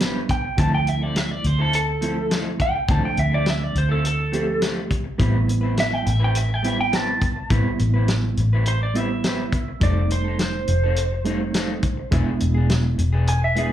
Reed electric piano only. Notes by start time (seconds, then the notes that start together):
Already playing: G3 B3 C4 D4
0.57 F3 A3 C4 E4
2.01 F3 A3 C4 E4
2.88 F3 A3 C4 D4
4.32 F3 A3 C4 G4
5.18 G3 B3 C4 E4
6.63 G3 B3 C4 E4
7.50 G3 B3 C4 E4
8.94 G3 B3 C4 E4
9.80 G3 A3 C4 D#4
11.25 G3 A3 C4 D#4
12.11 G#3 B3 D4 E4
13.56 G#3 B3 D4 E4